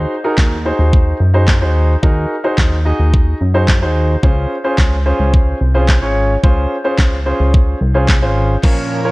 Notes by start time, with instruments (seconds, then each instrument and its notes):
Already playing: grand piano D#4 F#4 G#4 C5
0.24 grand piano D#4 F#4 G#4 A#4
0.38 analog synth bass D#2, kick, snare, clap
0.65 grand piano D#4 F#4 G#4 C5
0.79 analog synth bass D#2
0.93 kick
1.20 analog synth bass F#2
1.34 grand piano D#4 F#4 G#4 C5
1.48 kick, snare, clap
1.61 analog synth bass D#2, grand piano D#4 F#4 G#4 C5
2.03 analog synth bass D#2, grand piano D#4 F#4 G#4 A#4, kick
2.44 grand piano D#4 F#4 G#4 C5
2.58 analog synth bass D#2, kick, snare, clap
2.85 grand piano D#4 F#4 G#4 D#5
3.00 analog synth bass D#2
3.14 kick
3.41 analog synth bass F#2
3.54 grand piano D#4 F#4 G#4 C5
3.68 kick, snare, clap
3.82 analog synth bass D#2, grand piano D#4 F#4 G#4 C5
4.23 analog synth bass C#2, grand piano C#4 F4 G#4 C5, kick
4.64 grand piano C#4 F4 G#4 C5
4.78 analog synth bass C#2, kick, snare, clap
5.05 grand piano C#4 F4 G#4 C5
5.20 analog synth bass C#2
5.34 kick
5.61 analog synth bass C2
5.74 grand piano C#4 F4 G#4 C5
5.88 kick, snare, clap
6.02 analog synth bass G#1, grand piano C#4 F4 G#4 C#5
6.43 analog synth bass C#2, grand piano C#4 F4 G#4 C5, kick
6.84 grand piano C#4 F4 G#4 C5
6.98 analog synth bass C#2, kick, snare, clap
7.25 grand piano C#4 F4 G#4 C5
7.40 analog synth bass C#2
7.54 kick
7.81 analog synth bass C2
7.94 grand piano C#4 F4 G#4 C5
8.09 kick, snare, clap
8.22 analog synth bass G#1, grand piano C#4 F4 G#4 C5
8.63 supersaw synth A#2 F3 C#4 A#4, grand piano C#4 F4 A#4 C#5, kick, snare, crash, riser
9.05 grand piano C#4 F4 A#4 C#5